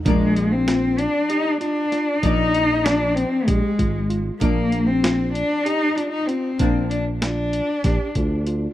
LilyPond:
<<
  \new Staff \with { instrumentName = "Tine electric piano" } { \time 7/8 \key bes \mixolydian \tempo 4 = 96 d'4 f'4 g'8 f'8 f'8 | d''4 f'4 g'8 f'8 f'8 | d'4 f'4 g'8 f'8 f'8 | d'4 f'4 g'8 f'8 f'8 | }
  \new Staff \with { instrumentName = "Cello" } { \time 7/8 \key bes \mixolydian aes8. c'8. d'8 ees'8 d'4 | ees'4 d'8 c'8 aes4 r8 | bes8. c'8. d'8 ees'8 d'16 ees'16 c'8~ | c'8 d'8 d'2 r8 | }
  \new Staff \with { instrumentName = "Hollow-body jazz guitar" } { \time 7/8 \key bes \mixolydian <f bes d''>2.~ <f bes d''>8 | <f bes d''>2.~ <f bes d''>8 | <f bes d''>2.~ <f bes d''>8 | <f bes d'>2.~ <f bes d'>8 | }
  \new Staff \with { instrumentName = "Fretless electric bass" } { \clef bass \time 7/8 \key bes \mixolydian bes,,2 r4. | bes,,2 bes,,16 r16 aes,,4 | bes,,2 r4. | bes,,2 bes,,16 r16 d,4 | }
  \new DrumStaff \with { instrumentName = "Drums" } \drummode { \time 7/8 <hh bd>8 hh8 <hh sn>8 hh8 hh8 hh8 <hh sn>8 | <hh bd>8 hh8 <hh sn>8 hh8 <hh bd>8 <hh bd>8 hh8 | <hh bd>8 hh8 <hh sn>8 hh8 hh8 hh8 hh8 | <hh bd>8 hh8 <hh sn>8 hh8 <hh bd sn>8 <hh bd>8 hh8 | }
>>